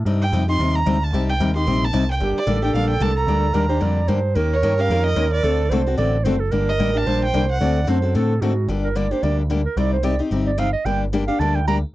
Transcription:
0.05 G2 C3 G3 C4 D#4 G4
0.21 G5
0.32 F2 C3 G3 C4 D#4 G4
0.48 C4 D#4 G4 C6
0.59 D#2 C3 G3 C4 D#4 G4
0.75 A#5
0.86 D2 C3 G3 C4 D#4 G4
1.03 A5
1.13 C2 C3 G3 C4 D#4 G4
1.30 G5
1.40 D#2 C3 G3 C4 D#4 G4
1.56 C4 D#4 G4 C6
1.66 A#1 C3 G3 C4 D#4 G4
1.84 A5
1.93 C2 C3 G3 C4 D#4 G4
2.11 G5
2.20 G1 D3 G3 A#3 D4 G4
2.38 D5
2.47 A1 D3 G3 A#3 D4 G4 A4
2.62 A#3 D4 G4 G5
2.73 A#1 D3 G3 A#3 D4 G4 F5
2.90 G5
3.00 C2 D3 G3 A#3 D4 G4 A5
3.16 A#5
3.27 D2 D3 G3 A#3 D4 G4
3.53 D#2 D3 G3 A#3 D4 G4 A#4
3.69 A#3 D4 G4 C5
3.81 F2 D3 G3 A#3 D4 G4 D5
4.08 G2 D3 G3 A#3 D4 G4 C5
4.35 D#2 D#3 A#3 C#4 G4 A#4
4.53 C#5
4.63 G2 D#3 A#3 C#4 G4 A#4
4.78 C#4 G4 A#4 F5
4.89 F2 D#3 A#3 C#4 G4 A#4
5.06 D#5
5.16 D#2 D#3 A#3 C#4 G4 A#4
5.34 D5
5.43 D2 D3 A3 C4 F#4 A4
5.70 C2 D3 A3 C4 F#4 A4 C5
5.86 C4 F#4 A4
5.97 A1 D3 A3 C4 F#4 A4 D5
6.24 F#1 D3 A3 C4 F#4 A4 C5
6.40 A4
6.51 G1 D3 G3 A#3 D4 G4 A#4
6.69 D#5
6.79 A1 D3 G3 A#3 D4 G4
6.94 A#3 D4 G4 A5
7.06 A#1 D3 G3 A#3 D4 G4 C5
7.25 G5
7.34 C2 D3 G3 A#3 D4 G4
7.52 F#5
7.60 D2 D3 A3 C4 F#4 A4 D5
7.87 F#2 D3 A3 C4 F#4 A4 C5
8.02 C4 F#4 A4
8.15 A2 D3 A3 C4 F#4 A4
8.41 G#2 D3 A3 C4 F#4 A4
8.68 G1 D3 G3 A#3 D4 G4
8.84 A#4
8.95 D3 G3 A#3 D4 G4 D5
9.11 A#3 D4 G4 C5
9.23 D2 D3 G3 A#3 D4 G4 D5
9.50 D3 G3 A#3 D4 G4
9.65 A#4
9.77 C2 C3 G3 C4 D#4 G4 D5
9.92 C5
10.03 C3 G3 C4 D#4 G4 D5
10.19 C4 D#4 G4
10.31 G1 C3 G3 C4 D#4 G4
10.47 D5
10.58 C3 G3 C4 D#4 G4 F5
10.73 D#5
10.85 G1 D3 G3 A#3 D4 G4 G5
11.13 D3 G3 A#3 D4 G4
11.28 A#3 D4 G4 F5
11.39 D2 D3 G3 A#3 D4 G4 A5
11.55 G5
11.67 D3 G3 A#3 D4 G4 A#5

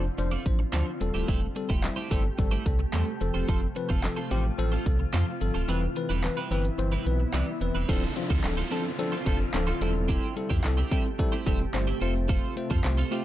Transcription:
Already playing: F1 D3 C4 F4
0.04 muted clean electric guitar stroke
0.18 F1 F3 D4 C5, muted clean electric guitar stroke, closed hi-hat
0.31 C4 F4 A4 D5
0.46 A1 F3 D4 C5, kick, closed hi-hat
0.59 muted clean electric guitar stroke
0.72 D2 F3 C4 D4 F4 A4 C5 D5, snare, clap, closed hi-hat
0.87 muted clean electric guitar stroke
1.00 E1 C3 G3 A3 C4 G4 A4, muted clean electric guitar stroke, closed hi-hat
1.14 D1 A3 E4 G4 C5
1.28 E1 A3 E4 G4 C5, kick, closed hi-hat
1.42 muted clean electric guitar stroke
1.55 G3 C4 A4, muted clean electric guitar stroke, closed hi-hat
1.69 E1 A3 E4 G4 C5, kick
1.83 G3 C4 E4, muted clean electric guitar stroke, snare, clap, closed hi-hat
1.96 A3 E4 G4 C5
2.10 G1 G3 A3 C4 E4 G4 A4 C5, kick, closed hi-hat
2.24 muted clean electric guitar stroke
2.38 G1 G3 C4 A4, muted clean electric guitar stroke, kick, closed hi-hat
2.51 A3 E4 G4 C5
2.65 C2 G3 C4 A4, muted clean electric guitar stroke, kick, closed hi-hat
2.79 muted clean electric guitar stroke
2.93 E2 G3 A3 C4 E4 G4 A4 C5, snare, clap, closed hi-hat
3.06 muted clean electric guitar stroke
3.20 F1 F3 C4 F4 A4, muted clean electric guitar stroke, closed hi-hat
3.34 E1 C4 F4 A4 C5
3.48 F1 C4 F4 A4 C5, kick, closed hi-hat
3.62 muted clean electric guitar stroke
3.75 F3 C4 B4, muted clean electric guitar stroke, closed hi-hat
3.89 F1 C4 F4 A4 C5, kick
4.04 F3 C4 A4, snare, clap, closed hi-hat
4.16 C4 F4 A4 C5
4.30 A1 F3 C4 F4 G4 A4 C5, closed hi-hat
4.44 muted clean electric guitar stroke
4.58 A1 F3 C4 A4, muted clean electric guitar stroke, closed hi-hat
4.72 C4 F4 A4 C5
4.86 C2 F3 C4 A4, muted clean electric guitar stroke, kick, closed hi-hat
4.99 muted clean electric guitar stroke
5.13 F2 F3 C4 F4 A4 C5, snare, clap, closed hi-hat
5.27 muted clean electric guitar stroke
5.41 G1 F3 C4 A4, muted clean electric guitar stroke, closed hi-hat
5.54 D1 C4 F4 A4 C5
5.68 E1 E3 G3 B3 C4 E4 B4, closed hi-hat
5.82 muted clean electric guitar stroke
5.96 E3 C4 B4, muted clean electric guitar stroke, closed hi-hat
6.09 E1 G3 C4 E4 B4
6.23 E3 C4 B4, muted clean electric guitar stroke, snare, clap, closed hi-hat
6.37 G3 C4 E4 B4
6.50 G1 E3 G3 C4 E4 B4, closed hi-hat
6.64 muted clean electric guitar stroke, closed hi-hat
6.78 G1 E3 C4 C5, muted clean electric guitar stroke, closed hi-hat
6.92 G3 C4 E4 B4
7.06 B1 E3 C4 B4, muted clean electric guitar stroke, closed hi-hat
7.20 muted clean electric guitar stroke
7.33 C2 E3 G3 C4 E4 B4 D5, snare, clap, closed hi-hat
7.47 muted clean electric guitar stroke
7.61 E1 E3 C4 B4, muted clean electric guitar stroke, closed hi-hat
7.75 E1 G3 C4 E4 B4
7.88 D1 D3 F3 C4 D4 F4 A4 C5, kick, closed hi-hat, crash, downlifter, shaker
8.03 shaker
8.16 F3 C4 D4 F4, muted clean electric guitar stroke, closed hi-hat
8.30 D2 C4 F4 A4 C5, kick, shaker
8.44 D1 F3 C4 D4 A4, muted clean electric guitar stroke, snare, clap, closed hi-hat, shaker
8.57 C4 F4 A4 C5, shaker
8.71 F3 C4 D4 F4 A4 C5, closed hi-hat, shaker
8.85 muted clean electric guitar stroke, shaker
8.98 F3 C4 D4 A4, muted clean electric guitar stroke, closed hi-hat, shaker
9.12 C4 F4 A4 C5, shaker
9.26 F1 F3 C4 D4 F4 A4 C5, kick, closed hi-hat, shaker
9.40 muted clean electric guitar stroke, shaker
9.53 D1 F3 C4 D4 A4, muted clean electric guitar stroke, snare, clap, closed hi-hat, shaker
9.67 C4 F4 A4 C5, shaker
9.81 E1 C3 G3 A3 C4 E4 G4 A4 C5, closed hi-hat
9.94 muted clean electric guitar stroke, shaker
10.08 C4 E4 G4 C5, kick, closed hi-hat, shaker
10.23 shaker
10.36 G3 C4 E4 A4, muted clean electric guitar stroke, closed hi-hat
10.49 E2 C4 E4 G4 C5, kick, shaker
10.64 C2 G3 C4 E4 A4, muted clean electric guitar stroke, snare, clap, closed hi-hat, shaker
10.77 C4 E4 G4 C5, shaker
10.91 G3 C4 E4 G4 A4 C5, kick, closed hi-hat, shaker
11.05 muted clean electric guitar stroke, shaker
11.18 G3 C4 E4 A4, muted clean electric guitar stroke, kick, closed hi-hat, shaker
11.32 C4 E4 G4 C5, shaker
11.46 E1 G3 C4 E4 G4 A4 C5, kick, closed hi-hat, shaker
11.60 muted clean electric guitar stroke, shaker
11.74 G1 G3 C4 E4 C5, muted clean electric guitar stroke, snare, clap, closed hi-hat, shaker
11.87 C4 E4 G4 C5, shaker
12.01 F1 A3 C4 F4 A4 C5, closed hi-hat
12.15 muted clean electric guitar stroke, shaker
12.28 C4 F4 A4 C5, kick, closed hi-hat, shaker
12.43 shaker
12.56 A3 C4 F4 C5, muted clean electric guitar stroke, closed hi-hat
12.70 F2 C4 F4 A4 C5, kick, shaker
12.84 C2 A3 C4 F4 C5, muted clean electric guitar stroke, snare, clap, closed hi-hat, shaker
12.97 C4 F4 A4 C5, shaker
13.11 A3 C4 F4 G4 A4 C5, closed hi-hat, shaker

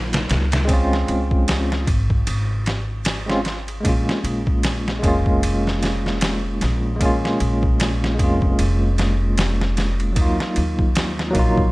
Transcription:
Already playing: A#1 F#3 A#3 D#4 F4
0.13 snare, ride
0.29 C#2, snare, ride
0.52 snare, ride
0.65 G#3 C4, ride
0.69 C#4, kick
0.73 F4
0.93 snare
1.08 C#2, ride
1.31 kick
1.48 snare, ride
1.72 snare
1.87 G#1, kick, ride
2.10 kick
2.27 G#1, ride
2.66 snare, ride
3.05 snare, ride
3.26 G#3 C4 C#4, snare
3.31 F4
3.45 snare, ride
3.68 ride
3.80 G#3 A#3
3.85 A#1 C#4, kick, ride
3.89 F4
4.09 snare
4.24 A#1, ride
4.47 kick
4.63 snare, ride
4.88 snare
4.99 G#3 A#3
5.03 F1 C#4, kick, ride
5.08 F4
5.26 kick
5.43 ride
5.67 snare
5.83 snare, ride
6.06 snare
6.21 snare, ride
6.61 A#1, snare, ride
6.96 G#3 A#3
7.01 C#4, kick, ride
7.05 F4
7.25 snare
7.40 A#1, ride
7.63 kick
7.80 snare, ride
8.04 snare
8.15 G#3 A#3
8.19 F1 C#4, kick, ride
8.24 F4
8.42 kick
8.59 F1, ride
8.98 snare, ride
9.38 snare, ride
9.61 snare
9.77 snare, ride
10.00 ride
10.12 F#3 A#3, kick, ride
10.17 D#2 D#4
10.21 F4
10.40 snare
10.56 D#2, ride
10.79 kick
10.95 snare, ride
11.19 snare
11.30 F#3 A#3
11.35 A#1 D#4, kick, ride
11.39 F4
11.57 kick

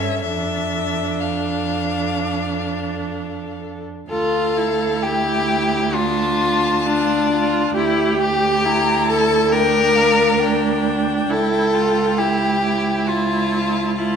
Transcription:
Already playing: G2 C#4 A4 E5
0.22 F2 D4 A4 E5
1.20 F5
4.09 D2 F4 A4 F5
4.57 E4
5.03 G4 G5
5.94 D4 F4 A5
6.86 D4 F4
7.31 F4
7.75 D2 E4 G4 G5
8.21 G4
8.65 E4 A#5
9.09 A4 A5
9.52 D4 A#4 G5
9.95 F5
10.39 D4 G5
11.29 C#2 E4 A4
11.74 F4
12.18 E4 G4
12.64 E4
13.08 F4 A5
13.98 E4 F4 A5

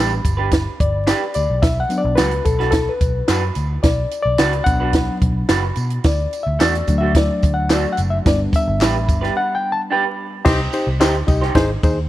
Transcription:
Already playing: A1 G3 B3 D4 G4 B4
0.25 G1, kick, closed hi-hat, tambourine
0.37 D4 G4 B4
0.51 kick, snare, closed hi-hat, tambourine
0.80 G1 D5, kick, closed hi-hat
1.07 D4 G4 B4, snare, clap, closed hi-hat, tambourine
1.34 D2 D5, closed hi-hat, tambourine
1.50 B1
1.62 B1 E5, kick, snare, closed hi-hat, tambourine
1.80 F#5
1.89 F#3 B3 D4, closed hi-hat, tambourine
1.98 D5
2.05 B1
2.15 C#2 D4 F#4 B4, snare, clap, closed hi-hat, tambourine
2.31 closed hi-hat
2.45 B1 A4, kick, closed hi-hat, tambourine
2.59 D4 F#4 B4, snare
2.71 A4, kick, snare, closed hi-hat
2.89 B4
3.01 B1, kick, closed hi-hat, tambourine
3.28 F#2 D4 F#4 B4, snare, clap, closed hi-hat, tambourine
3.55 D2, closed hi-hat, tambourine
3.83 B1 D5, kick, snare, closed hi-hat, tambourine
4.11 closed hi-hat, tambourine
4.22 B1 D5
4.38 C#2 D4 F#4 B4, snare, clap, closed hi-hat, tambourine
4.53 closed hi-hat
4.64 B1 F#3 B3 D4 F#5, kick, closed hi-hat, tambourine
4.80 D4 F#4 B4
4.93 kick, snare, closed hi-hat
5.22 B1, kick, closed hi-hat
5.49 F#1 D4 F#4 B4, snare, clap, closed hi-hat, tambourine
5.76 B2, closed hi-hat, tambourine
5.90 closed hi-hat
6.04 D2 D5, kick, snare, closed hi-hat, tambourine
6.33 closed hi-hat, tambourine
6.43 D2 E5
6.59 E2 A3 D4 F#4 D5, snare, clap, closed hi-hat, tambourine
6.75 closed hi-hat
6.87 D2 F#3 A3 D4, kick, closed hi-hat, tambourine
6.98 D4 F#4 E5
7.02 A3
7.15 D5, kick, snare, closed hi-hat
7.43 D2, kick, closed hi-hat, tambourine
7.54 F#5
7.70 A3 D4 F#4 D5, snare, clap, closed hi-hat, tambourine
7.92 F#5
7.97 F#1, closed hi-hat, tambourine
8.10 E5
8.25 G1 G3 B3 D4 D5, kick, snare, closed hi-hat, tambourine
8.53 E5, kick, closed hi-hat, tambourine
8.67 G1
8.81 A1 D4 G4 B4, snare, clap, closed hi-hat, tambourine
9.09 G1, kick, closed hi-hat, tambourine
9.21 D4 G4 B4, snare
9.37 F#5
9.55 G5
9.72 A5
9.90 D4 G4 B4 G5
10.45 C2 C4 D#4 G4 C5, kick, snare, crash, tambourine
10.73 D#4 G4 C5, ride, tambourine
10.87 C2
11.00 D2 D#4 G4 C5, snare, clap, ride, tambourine
11.15 ride
11.27 C2 D#4 G4 D#5, kick, ride, tambourine
11.41 D#4 G4 C5, snare
11.55 G#1 D#4 G#4 C5, kick, snare, ride
11.83 D#2 D#4 G#4 C5, kick, ride, tambourine

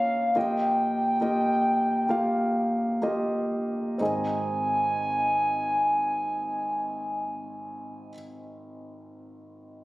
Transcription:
Already playing: A#1 A#2 A#3 C#4 F4 C#5 D#5 F5
0.35 A#1 A#2 A#3 F4 G4 D#5 G5
1.21 A#3 F4 G4 D#5
2.09 A#3 F4 G4 F5
3.02 A#3 F4 G4 D#5
3.98 G#1 C4 D#4 G#4 G#5
4.03 D#5

